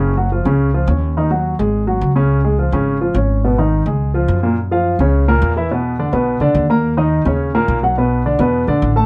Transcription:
Already playing: F#1 C#3 C#4
0.17 F#3 F#4
0.32 F3 F4
0.45 C#2 C#3 C#4
0.74 F3 F4
0.88 D#2 C#4 C#5
1.17 D#3 D#4
1.31 F#3 F#4
1.59 G#1 G#3 G#4
1.87 F#3 F#4
2.01 C#2
2.16 C#3 C#4
2.44 G#3 G#4
2.59 F3 F4
2.72 G#1 C#3 C#4
3.01 F3 F4
3.14 G#1 C#4 C#5
3.44 B2 B3
3.58 D#3 D#4
3.86 C#2 G#3 G#4
4.14 F3 F4
4.28 F#2
4.43 A#2 A#3
4.71 F3 F4 F5
4.99 C#2 C#3 C#4 C#5
5.28 A#2 A#3 A#4
5.42 E2
5.57 E3 E4 E5
5.71 B2 B3 B4
5.99 D3 D4 D5
6.13 B1 B2 B3 B4
6.40 C#2 D3 D4 D5
6.55 D#2
6.70 A#3 A#4 A#5
6.97 D#3 D#4 D#5
7.25 D#2 C#3 C#4 C#5
7.55 A#2 A#3 A#4
7.68 B1
7.83 F#3 F#4 F#5
7.98 B2 B3 B4
8.26 D3 D4 D5
8.39 E2 B2 B3 B4
8.67 A#1 D3 D4 D5
8.82 A1
8.96 A3 A4 A5

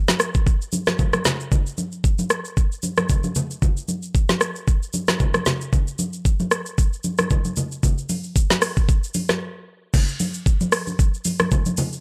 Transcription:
0.08 snare, high conga, shaker
0.20 cross-stick, shaker
0.34 kick, shaker
0.47 kick, shaker
0.62 shaker
0.72 high conga, shaker
0.87 cross-stick, snare, high conga, shaker
0.99 kick, low conga, shaker
1.13 cross-stick, high conga, shaker
1.25 snare, low conga, shaker
1.40 shaker
1.52 kick, low conga, shaker
1.66 shaker
1.78 high conga, shaker
1.92 shaker
2.04 kick, shaker
2.19 high conga, shaker
2.30 cross-stick, shaker
2.45 shaker
2.57 kick, shaker
2.72 shaker
2.83 high conga, shaker
2.97 cross-stick, high conga, shaker
3.09 kick, low conga, shaker
3.24 high conga, shaker
3.35 low conga, shaker
3.51 shaker
3.62 kick, low conga, shaker
3.77 shaker
3.88 high conga, shaker
4.03 shaker
4.15 kick, shaker
4.29 snare, high conga, shaker
4.41 cross-stick, shaker
4.56 shaker
4.68 kick, shaker
4.83 shaker
4.93 high conga, shaker
5.08 cross-stick, snare, high conga, shaker
5.20 kick, low conga, shaker
5.34 cross-stick, high conga, shaker
5.46 snare, low conga, shaker
5.61 shaker
5.73 kick, low conga, shaker
5.87 shaker
5.99 high conga, shaker
6.13 shaker
6.25 kick, shaker
6.40 high conga, shaker
6.51 cross-stick, shaker
6.66 shaker
6.78 kick, shaker
6.93 shaker
7.04 high conga, shaker
7.18 cross-stick, high conga, shaker
7.30 kick, low conga, shaker
7.45 high conga, shaker
7.56 low conga, shaker
7.72 shaker
7.83 kick, low conga, shaker
7.98 shaker
8.09 open hi-hat, high conga, shaker
8.24 shaker
8.36 kick, shaker
8.50 snare, high conga, shaker
8.62 cross-stick, open hi-hat, shaker
8.77 kick, shaker
8.89 kick, shaker
9.04 shaker
9.14 open hi-hat, high conga, shaker
9.29 cross-stick, snare, high conga, shaker
9.94 kick, crash, low conga, shaker
10.08 shaker
10.20 open hi-hat, high conga, shaker
10.34 shaker
10.46 kick, shaker
10.61 high conga, shaker
10.72 cross-stick, open hi-hat, shaker
10.87 high conga, shaker
10.99 kick, shaker
11.14 shaker
11.25 open hi-hat, high conga, shaker
11.39 cross-stick, high conga, shaker
11.51 kick, low conga, shaker
11.66 high conga, shaker
11.77 open hi-hat, low conga, shaker
11.93 shaker

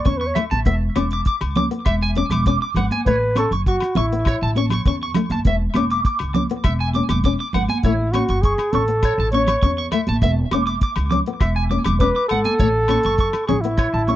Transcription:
0.00 D5
0.05 E2 C#4 C#5 C#6, kick, closed hi-hat
0.18 B4 C#6
0.27 C#5
0.35 A3 E5, cross-stick, closed hi-hat, low conga, low agogo
0.51 A1 A5, closed hi-hat, high conga
0.65 E1 B3 E5, kick, closed hi-hat
0.96 E1 C#4 D6, cross-stick, closed hi-hat, high conga, low agogo
1.11 D6, closed hi-hat
1.25 D6, kick, closed hi-hat
1.41 C#2, cross-stick, low agogo
1.56 C#4 D6, closed hi-hat, high conga, low conga
1.71 B3, closed hi-hat
1.86 E1 E5, kick, cross-stick, closed hi-hat, low agogo
2.02 G#5
2.15 C#4 D6, closed hi-hat, high conga
2.30 E1 D6, cross-stick, closed hi-hat, low conga, low agogo
2.46 C#4 D6, kick, closed hi-hat
2.62 D6
2.75 G#1 B3 F#5, closed hi-hat, low conga, low agogo
2.91 G#5, closed hi-hat, high conga
3.06 A1 A3 B4 C#5, kick, closed hi-hat
3.35 C#4 A4 C#6, cross-stick, closed hi-hat, high conga, low agogo
3.51 F#1 C#6, closed hi-hat
3.66 F#4 C#6, kick, closed hi-hat
3.80 cross-stick, low agogo
3.95 A1 E4 C#6, closed hi-hat, high conga, low conga
4.12 B3, closed hi-hat
4.25 C#5, kick, cross-stick, closed hi-hat, low agogo
4.42 A1 A5
4.56 C#4 C#6, closed hi-hat, high conga
4.70 C#6, cross-stick, closed hi-hat, low conga, low agogo
4.85 E2 C#4 C#6, kick, closed hi-hat
5.03 C#6
5.14 A3, muted clean electric guitar stroke, cross-stick, closed hi-hat, low conga, low agogo
5.30 F#1 A5, closed hi-hat, high conga
5.45 E1 B3 E5, kick, closed hi-hat
5.74 E1 C#4 D6, cross-stick, closed hi-hat, high conga, low agogo
5.90 D6, closed hi-hat
6.05 D6, kick, closed hi-hat
6.19 C#2, cross-stick, low agogo
6.35 C#4 D6, closed hi-hat, high conga, low conga
6.50 B3, closed hi-hat
6.64 E1 E5, kick, cross-stick, closed hi-hat, low agogo
6.80 G#5
6.94 C#4 D6, closed hi-hat, high conga
7.09 E1 D6, cross-stick, closed hi-hat, high conga, low conga, low agogo
7.24 C#4 D6, kick, closed hi-hat
7.40 D6
7.53 G#1 B3 F#5, closed hi-hat, low conga, low agogo
7.69 G#5, closed hi-hat, high conga
7.83 A1 A3 E4 C#5, kick, closed hi-hat
8.12 C#4 F#4 C#6, cross-stick, closed hi-hat, high conga, low agogo
8.29 F#1 C#6, closed hi-hat
8.42 G#4 C#6, kick, closed hi-hat
8.58 cross-stick, low agogo
8.72 A1 C#4 A4 C#6, closed hi-hat, high conga, low conga
8.88 B3, closed hi-hat
9.03 C#5, kick, cross-stick, closed hi-hat, low agogo
9.18 A1 A5
9.32 C#4 C#5 C#6, closed hi-hat, high conga
9.47 C#6, cross-stick, closed hi-hat, low conga, low agogo
9.62 E2 C#4 C#6, kick, closed hi-hat
9.78 C#6
9.92 A3 E5, cross-stick, closed hi-hat, low conga, low agogo
10.07 A1 A5, closed hi-hat, high conga
10.22 E1 B3 E5, kick, closed hi-hat
10.51 E1 C#4 D6, cross-stick, closed hi-hat, high conga, low agogo
10.67 D6, closed hi-hat
10.81 D6, kick, closed hi-hat
10.96 C#2, cross-stick, low agogo
11.11 C#4 D6, closed hi-hat, high conga, low conga
11.26 B3, closed hi-hat
11.41 E1 E5, kick, cross-stick, closed hi-hat, low agogo
11.56 G#5
11.71 C#4 D6, closed hi-hat, high conga
11.84 E1 D6, cross-stick, closed hi-hat, low conga, low agogo
12.00 C#4 B4 D6, kick, closed hi-hat
12.16 D6
12.29 G#1 B3 A4 F#5, closed hi-hat, low agogo
12.45 G#5, closed hi-hat, high conga
12.59 A1 A3 C#5, kick, closed hi-hat
12.88 C#4 C#6, cross-stick, closed hi-hat, high conga, low agogo
13.03 F#1 C#6, closed hi-hat
13.18 C#6, kick, closed hi-hat
13.33 cross-stick, low agogo
13.47 A1 C#4 G#4 C#6, closed hi-hat, high conga, low conga
13.61 B3 E4, closed hi-hat
13.78 C#5, kick, cross-stick, closed hi-hat, low agogo
13.94 A1 A5
14.08 C#4 C#6, closed hi-hat, high conga

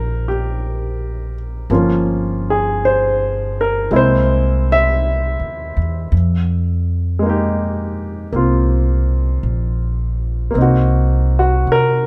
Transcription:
Already playing: A#1 G3 A#3 D4 F4 A#4 C5
0.28 G4
1.70 G1 F3 A#3 C#4 F4
2.50 G#4
2.85 C5
3.61 A#4
3.91 C2 G#3 A#3 C4 E4
3.96 C5
4.72 E5
5.40 D#2
5.77 E2
6.12 F2
7.19 G#3 A#3
7.26 D#4 G4
8.32 C2 A#3 C4 F4
9.43 A#1
10.51 A#3 C4
10.55 C2 D#4
10.62 F#4
11.39 F#4
11.67 C3
11.72 A#4

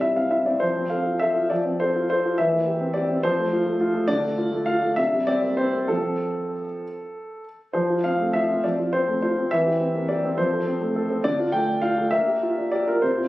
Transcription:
Already playing: C3 G3 D5
0.01 E4 E5
0.16 C4 F5
0.31 E4 E5
0.46 C4 D5
0.60 F3 C5
0.77 C4
0.90 A4 F5
1.06 F4
1.19 A4 E5
1.36 F4
1.50 F3 D5
1.66 C4
1.80 A4 C5
1.96 F4
2.10 A4 C5
2.25 F4
2.38 E3 E5
2.53 A#3
2.67 G4
2.81 C4
2.94 G4 D5
3.10 C4
3.23 F3 C5
3.39 A3
3.53 F4
3.66 A3
3.81 F4
3.94 A3
4.08 D3 D5
4.24 A3
4.38 F4
4.52 A3
4.66 F4 F5
4.82 A3
4.96 C3 E5
5.13 G3
5.27 C4 D5
5.43 A#3
5.57 C4 C5
5.75 A#3
5.88 F3 C4 F4 A4
7.73 F3 C5
7.90 F4
8.04 C4 F5
8.19 A3
8.33 F4 E5
8.50 C4
8.64 F3 D5
8.79 F4
8.93 C4 C5
9.08 A3
9.22 F4 C5
9.38 C4
9.51 E3 E5
9.66 G4
9.81 C4
9.96 A#3
10.09 G4 D5
10.25 C4
10.38 F3 C5
10.53 A4
10.67 C4
10.81 A3
10.96 A4
11.10 C4
11.24 D3 D5
11.39 F4
11.52 A3 G5
11.68 D4
11.82 F4 F5
11.98 A3
12.11 A#3 E5
12.27 G4
12.43 F4
12.57 D4
12.72 G4 D5
12.88 F4 A#4
13.02 C3 C5
13.18 F4

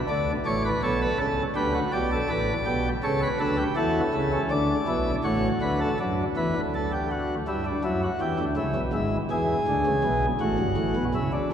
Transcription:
0.09 D2 D3 D4 D5
0.46 A1 A2 C#5 D5
0.65 B4
0.83 B1 B2 A4 C#5
1.02 B4
1.19 C#2 C#3 A4
1.56 D2 D3 G4 B4
1.74 F#4
1.93 B1 B2 G4 D5
2.12 A4
2.30 A1 A2 B4
2.66 B1 B2 G4
3.04 C#2 C#3 A4 C#5
3.22 B4
3.40 D2 D3 A4 B4
3.58 G4
3.76 E2 E3 F#4 A4
4.14 C#2 C#3 E4
4.33 C#4
4.51 D2 D3 D4 D5
4.88 B1 B2 E4
5.24 A1 A2 F#4 C#5
5.62 D2 D3 B4
5.81 A4
6.00 F#2 F#3 D4
6.37 E2 E3 B4
6.56 D2 D3
6.75 A4
6.93 G4
7.11 F#4
7.48 G2 G3 E4
7.66 D4
7.84 F#2 F#3 E4
8.03 F#4
8.21 E2 E3 G4
8.39 D2 D3
8.57 C#2 C#3 E4
8.76 B1 B2
8.93 G#1 G#2 E4
9.31 E2 E3 G#4
9.68 D2 D3
9.86 C#2 C#3
10.04 B1 B2
10.41 A1 A2 F#4
10.59 G1 G2
10.77 A1 A2
10.96 B1 B2
11.15 C#2 C#3 E4
11.33 D4

